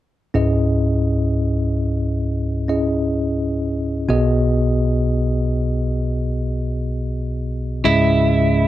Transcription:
0, 0, Header, 1, 4, 480
1, 0, Start_track
1, 0, Key_signature, 4, "minor"
1, 0, Tempo, 937500
1, 177, Time_signature, 4, 2, 24, 8
1, 4443, End_track
2, 0, Start_track
2, 0, Title_t, "Clean electric guitar"
2, 0, Program_c, 0, 27
2, 4020, Note_on_c, 0, 64, 75
2, 4443, Note_off_c, 0, 64, 0
2, 4443, End_track
3, 0, Start_track
3, 0, Title_t, "Tine electric piano"
3, 0, Program_c, 1, 4
3, 175, Note_on_c, 1, 61, 43
3, 177, Note_on_c, 1, 64, 39
3, 178, Note_on_c, 1, 37, 47
3, 178, Note_on_c, 1, 44, 45
3, 178, Note_on_c, 1, 68, 39
3, 182, Note_on_c, 1, 75, 47
3, 265, Control_c, 1, 64, 127
3, 1355, Note_off_c, 1, 61, 0
3, 1356, Note_off_c, 1, 64, 0
3, 1357, Note_off_c, 1, 68, 0
3, 1359, Note_off_c, 1, 75, 0
3, 1375, Note_on_c, 1, 61, 35
3, 1378, Note_on_c, 1, 64, 31
3, 1379, Note_on_c, 1, 75, 38
3, 1380, Note_on_c, 1, 68, 30
3, 2077, Note_off_c, 1, 37, 0
3, 2077, Note_off_c, 1, 44, 0
3, 2091, Note_off_c, 1, 68, 0
3, 2092, Note_on_c, 1, 59, 50
3, 2093, Note_off_c, 1, 75, 0
3, 2093, Note_on_c, 1, 66, 44
3, 2094, Note_on_c, 1, 47, 51
3, 2095, Note_on_c, 1, 35, 50
3, 2096, Note_off_c, 1, 61, 0
3, 2097, Note_off_c, 1, 64, 0
3, 2097, Note_on_c, 1, 68, 43
3, 2099, Note_on_c, 1, 75, 55
3, 2103, Control_c, 1, 64, 0
3, 2187, Control_c, 1, 64, 127
3, 3994, Note_off_c, 1, 59, 0
3, 3994, Note_off_c, 1, 66, 0
3, 3995, Note_off_c, 1, 35, 0
3, 3995, Note_off_c, 1, 47, 0
3, 3996, Note_off_c, 1, 68, 0
3, 3998, Note_off_c, 1, 75, 0
3, 4016, Note_on_c, 1, 61, 56
3, 4018, Note_on_c, 1, 44, 47
3, 4018, Note_on_c, 1, 64, 53
3, 4020, Note_on_c, 1, 68, 51
3, 4021, Note_on_c, 1, 75, 59
3, 4025, Control_c, 1, 64, 0
3, 4103, Control_c, 1, 64, 127
3, 4443, Note_off_c, 1, 44, 0
3, 4443, Note_off_c, 1, 61, 0
3, 4443, Note_off_c, 1, 64, 0
3, 4443, Note_off_c, 1, 68, 0
3, 4443, Note_off_c, 1, 75, 0
3, 4443, End_track
4, 0, Start_track
4, 0, Title_t, "Fretless electric bass"
4, 0, Program_c, 2, 35
4, 4019, Note_on_c, 2, 37, 75
4, 4443, Note_off_c, 2, 37, 0
4, 4443, End_track
0, 0, End_of_file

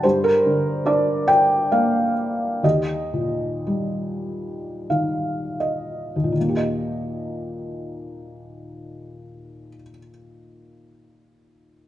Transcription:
0, 0, Header, 1, 2, 480
1, 0, Start_track
1, 0, Key_signature, -3, "major"
1, 0, Tempo, 834492
1, 24, Time_signature, 3, 2, 24, 8
1, 984, Tempo, 924499
1, 1464, Tempo, 1027397
1, 1944, Tempo, 1232033
1, 2424, Tempo, 1477833
1, 3864, Tempo, 1522843
1, 4668, End_track
2, 0, Start_track
2, 0, Title_t, "Felt piano"
2, 0, Program_c, 0, 0
2, 0, Control_c, 0, 64, 127
2, 19, Note_on_c, 0, 72, 59
2, 22, Note_on_c, 0, 43, 40
2, 29, Note_on_c, 0, 67, 43
2, 32, Control_c, 0, 64, 0
2, 138, Note_on_c, 0, 70, 67
2, 142, Note_off_c, 0, 72, 0
2, 148, Control_c, 0, 64, 127
2, 262, Note_on_c, 0, 50, 35
2, 492, Note_on_c, 0, 62, 41
2, 497, Note_on_c, 0, 74, 64
2, 502, Note_off_c, 0, 70, 0
2, 713, Note_off_c, 0, 67, 0
2, 734, Note_on_c, 0, 79, 72
2, 743, Note_off_c, 0, 74, 0
2, 967, Note_off_c, 0, 79, 0
2, 988, Note_on_c, 0, 77, 56
2, 990, Note_on_c, 0, 58, 35
2, 1202, Note_off_c, 0, 50, 0
2, 1444, Note_off_c, 0, 43, 0
2, 1444, Note_off_c, 0, 62, 0
2, 1446, Note_off_c, 0, 77, 0
2, 1453, Note_off_c, 0, 58, 0
2, 1462, Note_on_c, 0, 39, 41
2, 1467, Note_on_c, 0, 75, 49
2, 1471, Control_c, 0, 64, 0
2, 1472, Note_on_c, 0, 67, 38
2, 1541, Control_c, 0, 64, 127
2, 1697, Note_on_c, 0, 46, 29
2, 1946, Note_on_c, 0, 55, 33
2, 2410, Note_off_c, 0, 75, 0
2, 2412, Note_off_c, 0, 67, 0
2, 2426, Note_on_c, 0, 51, 27
2, 2426, Note_on_c, 0, 77, 32
2, 2643, Note_off_c, 0, 46, 0
2, 2643, Note_off_c, 0, 77, 0
2, 2654, Note_on_c, 0, 75, 36
2, 2830, Note_off_c, 0, 39, 0
2, 2835, Note_on_c, 0, 39, 25
2, 2860, Note_on_c, 0, 46, 24
2, 2883, Note_off_c, 0, 51, 0
2, 2886, Note_off_c, 0, 75, 0
2, 2887, Note_on_c, 0, 51, 25
2, 2888, Note_off_c, 0, 55, 0
2, 2905, Control_c, 0, 64, 0
2, 2914, Note_on_c, 0, 58, 21
2, 2941, Note_on_c, 0, 67, 23
2, 2957, Control_c, 0, 64, 127
2, 2968, Note_on_c, 0, 75, 28
2, 3970, Note_off_c, 0, 39, 0
2, 3995, Note_off_c, 0, 46, 0
2, 4021, Note_off_c, 0, 51, 0
2, 4046, Note_off_c, 0, 58, 0
2, 4073, Note_off_c, 0, 67, 0
2, 4099, Note_off_c, 0, 75, 0
2, 4668, End_track
0, 0, End_of_file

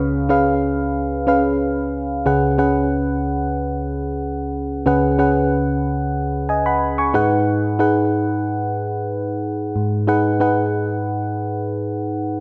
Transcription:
0, 0, Header, 1, 2, 480
1, 0, Start_track
1, 0, Tempo, 652174
1, 1660, Time_signature, 4, 2, 24, 8
1, 9128, End_track
2, 0, Start_track
2, 0, Title_t, "FM electric piano"
2, 0, Program_c, 0, 5
2, 0, Control_c, 0, 64, 127
2, 0, Note_on_c, 0, 37, 72
2, 0, Note_on_c, 0, 49, 72
2, 0, Note_on_c, 0, 61, 80
2, 0, Note_on_c, 0, 68, 75
2, 0, Note_on_c, 0, 71, 76
2, 0, Note_on_c, 0, 77, 90
2, 215, Note_off_c, 0, 61, 0
2, 215, Note_on_c, 0, 61, 86
2, 219, Note_off_c, 0, 68, 0
2, 219, Note_on_c, 0, 68, 81
2, 221, Note_off_c, 0, 71, 0
2, 221, Note_on_c, 0, 71, 82
2, 223, Note_off_c, 0, 77, 0
2, 223, Note_on_c, 0, 77, 97
2, 690, Note_off_c, 0, 61, 0
2, 692, Note_off_c, 0, 68, 0
2, 693, Note_off_c, 0, 71, 0
2, 694, Note_off_c, 0, 77, 0
2, 933, Note_on_c, 0, 61, 78
2, 938, Note_on_c, 0, 68, 67
2, 941, Note_on_c, 0, 71, 72
2, 945, Note_on_c, 0, 77, 86
2, 1410, Note_off_c, 0, 61, 0
2, 1412, Note_off_c, 0, 68, 0
2, 1413, Note_off_c, 0, 71, 0
2, 1415, Note_off_c, 0, 77, 0
2, 1629, Note_off_c, 0, 49, 0
2, 1630, Note_off_c, 0, 37, 0
2, 1661, Note_on_c, 0, 61, 77
2, 1664, Note_on_c, 0, 37, 71
2, 1664, Note_on_c, 0, 68, 71
2, 1665, Note_on_c, 0, 49, 68
2, 1666, Note_on_c, 0, 71, 67
2, 1668, Note_on_c, 0, 78, 86
2, 1672, Control_c, 0, 64, 0
2, 1790, Control_c, 0, 64, 127
2, 1818, Note_off_c, 0, 61, 0
2, 1820, Note_off_c, 0, 68, 0
2, 1821, Note_off_c, 0, 71, 0
2, 1822, Note_off_c, 0, 78, 0
2, 1900, Note_on_c, 0, 61, 77
2, 1902, Note_on_c, 0, 68, 69
2, 1905, Note_on_c, 0, 71, 70
2, 1907, Note_on_c, 0, 78, 87
2, 2530, Note_off_c, 0, 61, 0
2, 2532, Note_off_c, 0, 68, 0
2, 2533, Note_off_c, 0, 71, 0
2, 2534, Note_off_c, 0, 78, 0
2, 3553, Note_off_c, 0, 37, 0
2, 3553, Note_off_c, 0, 49, 0
2, 3576, Note_on_c, 0, 61, 76
2, 3579, Note_on_c, 0, 68, 74
2, 3580, Note_on_c, 0, 37, 68
2, 3581, Note_on_c, 0, 49, 71
2, 3582, Note_on_c, 0, 71, 72
2, 3586, Note_on_c, 0, 78, 87
2, 3736, Note_off_c, 0, 61, 0
2, 3737, Note_off_c, 0, 68, 0
2, 3739, Note_off_c, 0, 71, 0
2, 3741, Note_off_c, 0, 78, 0
2, 3816, Note_on_c, 0, 61, 81
2, 3818, Note_on_c, 0, 68, 70
2, 3820, Note_on_c, 0, 71, 72
2, 3822, Note_on_c, 0, 78, 83
2, 4448, Note_off_c, 0, 61, 0
2, 4449, Note_off_c, 0, 68, 0
2, 4450, Note_off_c, 0, 71, 0
2, 4452, Note_off_c, 0, 78, 0
2, 4777, Note_on_c, 0, 80, 66
2, 4781, Note_on_c, 0, 75, 57
2, 4893, Note_off_c, 0, 80, 0
2, 4895, Note_off_c, 0, 75, 0
2, 4901, Note_on_c, 0, 83, 70
2, 4905, Note_on_c, 0, 78, 58
2, 5129, Note_off_c, 0, 83, 0
2, 5131, Note_off_c, 0, 78, 0
2, 5139, Note_on_c, 0, 85, 68
2, 5142, Note_on_c, 0, 80, 56
2, 5231, Note_off_c, 0, 37, 0
2, 5231, Note_off_c, 0, 49, 0
2, 5254, Note_on_c, 0, 63, 86
2, 5258, Note_on_c, 0, 68, 82
2, 5259, Note_on_c, 0, 44, 72
2, 5259, Note_on_c, 0, 71, 75
2, 5264, Note_on_c, 0, 78, 98
2, 5272, Control_c, 0, 64, 0
2, 5368, Note_off_c, 0, 85, 0
2, 5369, Note_off_c, 0, 80, 0
2, 5394, Control_c, 0, 64, 127
2, 5642, Note_off_c, 0, 63, 0
2, 5643, Note_off_c, 0, 68, 0
2, 5644, Note_off_c, 0, 71, 0
2, 5646, Note_off_c, 0, 78, 0
2, 5734, Note_on_c, 0, 63, 80
2, 5737, Note_on_c, 0, 68, 71
2, 5740, Note_on_c, 0, 71, 75
2, 5743, Note_on_c, 0, 78, 87
2, 6368, Note_off_c, 0, 63, 0
2, 6369, Note_off_c, 0, 68, 0
2, 6370, Note_off_c, 0, 71, 0
2, 6372, Note_off_c, 0, 78, 0
2, 7150, Note_off_c, 0, 44, 0
2, 7181, Note_on_c, 0, 44, 71
2, 7415, Note_on_c, 0, 63, 74
2, 7419, Note_on_c, 0, 68, 70
2, 7422, Note_on_c, 0, 71, 70
2, 7423, Note_on_c, 0, 78, 88
2, 7575, Note_off_c, 0, 63, 0
2, 7577, Note_off_c, 0, 68, 0
2, 7579, Note_off_c, 0, 71, 0
2, 7580, Note_off_c, 0, 78, 0
2, 7655, Note_on_c, 0, 63, 76
2, 7657, Note_on_c, 0, 68, 72
2, 7661, Note_on_c, 0, 71, 73
2, 7664, Note_on_c, 0, 78, 83
2, 8288, Note_off_c, 0, 63, 0
2, 8289, Note_off_c, 0, 68, 0
2, 8291, Note_off_c, 0, 71, 0
2, 8292, Note_off_c, 0, 78, 0
2, 9071, Note_off_c, 0, 44, 0
2, 9128, End_track
0, 0, End_of_file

